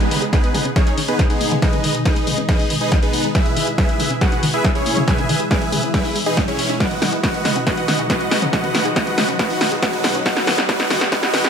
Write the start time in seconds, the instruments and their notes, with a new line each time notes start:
Already playing: ambient pad B2 D#3 G#3 D#4, supersaw synth B3 D#4 G#4 B4, riser
0.00 synth arpeggio sound D#4, closed hi-hat
0.11 synth arpeggio sound D#3, open hi-hat
0.22 synth arpeggio sound G#4, closed hi-hat
0.33 synth arpeggio sound B3, supersaw synth B3 D#4 G#4 B4, kick, snare, closed hi-hat
0.44 synth arpeggio sound G#3, closed hi-hat
0.54 synth arpeggio sound G#3, open hi-hat, mid tom
0.65 synth arpeggio sound C#4
0.76 synth arpeggio sound G#3, supersaw synth C#4 D#4 G#4 C#5, kick, snare, closed hi-hat
0.87 synth arpeggio sound D#4, closed hi-hat
0.98 synth arpeggio sound D#3, open hi-hat
1.08 supersaw synth B3 D#4 G#4 B4, synth arpeggio sound G#4, closed hi-hat
1.19 synth arpeggio sound B3, kick, snare, closed hi-hat
1.30 supersaw synth G#3 B3 D#4 G#4, synth arpeggio sound D#4, closed hi-hat
1.41 synth arpeggio sound A#3, open hi-hat
1.52 synth arpeggio sound G#3, closed hi-hat, mid tom
1.62 supersaw synth D#4 G#4 B4 D#5, kick, snare, closed hi-hat
1.73 synth arpeggio sound D#4, closed hi-hat, mid tom
1.84 synth arpeggio sound D#3, open hi-hat
1.95 synth arpeggio sound G#4, closed hi-hat
2.05 synth arpeggio sound B3, supersaw synth D#4 G#4 B4 D#5, kick, snare, closed hi-hat
2.16 synth arpeggio sound G#3, closed hi-hat
2.27 synth arpeggio sound G#3, open hi-hat, mid tom
2.38 synth arpeggio sound C#4, closed hi-hat
2.49 synth arpeggio sound G#3, supersaw synth D#4 G#4 B4 D#5, kick, snare, closed hi-hat
2.59 synth arpeggio sound D#4, open hi-hat
2.70 synth arpeggio sound D#3, open hi-hat
2.81 supersaw synth D#4 G#4 B4 D#5, synth arpeggio sound G#4, closed hi-hat
2.92 synth arpeggio sound B3, kick, snare, closed hi-hat
3.03 supersaw synth B3 D#4 G#4 B4, synth arpeggio sound D#4, closed hi-hat
3.13 synth arpeggio sound A#3, open hi-hat
3.24 synth arpeggio sound G#3, closed hi-hat
3.35 ambient pad E3 G#3 E4, synth arpeggio sound G#3, supersaw synth E4 G#4 B4 E5, kick, snare, closed hi-hat
3.46 synth arpeggio sound D#4, closed hi-hat
3.57 synth arpeggio sound D#3, open hi-hat
3.67 synth arpeggio sound G#4, closed hi-hat
3.78 supersaw synth E4 G#4 B4 E5, kick, snare, closed hi-hat
3.89 synth arpeggio sound G#3, closed hi-hat
4.00 synth arpeggio sound G#3, open hi-hat, mid tom
4.11 synth arpeggio sound C#4, closed hi-hat
4.21 synth arpeggio sound G#3, supersaw synth F#4 G#4 B4 F#5, kick, snare, closed hi-hat
4.32 synth arpeggio sound D#4, closed hi-hat
4.43 synth arpeggio sound D#3, open hi-hat
4.54 supersaw synth E4 G#4 B4 E5, synth arpeggio sound G#4, closed hi-hat
4.65 synth arpeggio sound B3, kick, snare, closed hi-hat
4.75 supersaw synth C#4 E4 G#4 C#5, synth arpeggio sound D#4, closed hi-hat
4.86 synth arpeggio sound A#3, open hi-hat
4.97 synth arpeggio sound G#3, closed hi-hat, mid tom
5.08 synth arpeggio sound G#3, supersaw synth G#4 B4 E5 G#5, kick, snare, closed hi-hat
5.18 synth arpeggio sound D#4, closed hi-hat, mid tom
5.29 synth arpeggio sound D#3, open hi-hat
5.40 synth arpeggio sound G#4, closed hi-hat
5.51 synth arpeggio sound B3, supersaw synth G#4 B4 E5 G#5, kick, snare, closed hi-hat
5.62 synth arpeggio sound G#3, closed hi-hat
5.72 synth arpeggio sound G#3, open hi-hat, mid tom
5.83 synth arpeggio sound C#4, closed hi-hat
5.94 supersaw synth E4 G#4 B4 E5, kick, snare, closed hi-hat
6.05 synth arpeggio sound D#4, open hi-hat
6.16 synth arpeggio sound G#3, open hi-hat
6.26 supersaw synth D#4 G#4 B4 D#5, synth arpeggio sound G#4, closed hi-hat
6.37 synth arpeggio sound G#2, kick, snare, closed hi-hat
6.48 synth arpeggio sound G#3, supersaw synth C#4 E4 G#4 C#5, closed hi-hat
6.59 synth arpeggio sound G#4, open hi-hat
6.70 synth arpeggio sound D#4, closed hi-hat
6.80 ambient pad D#3 F#3 D#4, synth arpeggio sound G#3, supersaw synth F#4 B4 D#5 F#5, kick, snare, closed hi-hat
6.91 synth arpeggio sound D#4, closed hi-hat
7.02 synth arpeggio sound D#3, snare, open hi-hat
7.13 synth arpeggio sound G#4, closed hi-hat
7.23 synth arpeggio sound B3, supersaw synth F#4 B4 D#5 F#5, kick, snare, closed hi-hat
7.34 synth arpeggio sound G#3, closed hi-hat
7.45 synth arpeggio sound G#3, snare, open hi-hat, mid tom
7.56 synth arpeggio sound C#4, closed hi-hat
7.67 synth arpeggio sound G#3, supersaw synth F#4 B4 D#5 F#5, kick, snare, closed hi-hat
7.77 synth arpeggio sound D#4, closed hi-hat
7.88 synth arpeggio sound D#3, snare, open hi-hat
7.99 synth arpeggio sound G#4
8.10 synth arpeggio sound B3, supersaw synth F#4 B4 D#5 F#5, kick, snare, closed hi-hat
8.21 synth arpeggio sound G#3, closed hi-hat
8.31 synth arpeggio sound G#3, snare, open hi-hat
8.42 synth arpeggio sound C#4, closed hi-hat, mid tom
8.53 synth arpeggio sound G#3, supersaw synth F#4 B4 D#5 F#5, kick, snare, closed hi-hat
8.64 synth arpeggio sound D#4, closed hi-hat, mid tom
8.75 synth arpeggio sound D#3, snare, open hi-hat
8.85 synth arpeggio sound G#4, closed hi-hat
8.96 synth arpeggio sound B3, supersaw synth F#4 B4 D#5 F#5, kick, snare, closed hi-hat
9.07 synth arpeggio sound G#3, closed hi-hat
9.18 synth arpeggio sound G#3, snare, open hi-hat, mid tom
9.28 synth arpeggio sound C#4, closed hi-hat
9.39 synth arpeggio sound G#3, supersaw synth F#4 B4 D#5 F#5, kick, snare, closed hi-hat
9.50 synth arpeggio sound D#4, open hi-hat
9.61 synth arpeggio sound D#3, snare, open hi-hat
9.72 synth arpeggio sound G#4, closed hi-hat
9.82 synth arpeggio sound B3, supersaw synth F#4 B4 D#5 F#5, kick, snare, closed hi-hat
9.93 synth arpeggio sound G#3, closed hi-hat
10.04 synth arpeggio sound G#3, snare, open hi-hat
10.15 synth arpeggio sound C#4, closed hi-hat
10.26 ambient pad C#3 E3 G#3 E4, synth arpeggio sound G#3, supersaw synth F#4 B4 D#5 F#5, kick, snare, closed hi-hat
10.37 synth arpeggio sound D#4, snare, closed hi-hat
10.47 synth arpeggio sound D#3, snare, open hi-hat
10.58 synth arpeggio sound G#4, snare, closed hi-hat
10.69 synth arpeggio sound G#3, supersaw synth F#4 B4 D#5 F#5, kick, snare, closed hi-hat
10.80 synth arpeggio sound D#4, snare, closed hi-hat
10.90 synth arpeggio sound D#3, snare, open hi-hat, mid tom
11.01 synth arpeggio sound G#4, snare, closed hi-hat
11.12 synth arpeggio sound G#3, supersaw synth F#4 B4 D#5 F#5, kick, snare, closed hi-hat
11.23 synth arpeggio sound D#4, snare, closed hi-hat
11.34 synth arpeggio sound D#3, snare, open hi-hat
11.44 synth arpeggio sound G#4, snare, closed hi-hat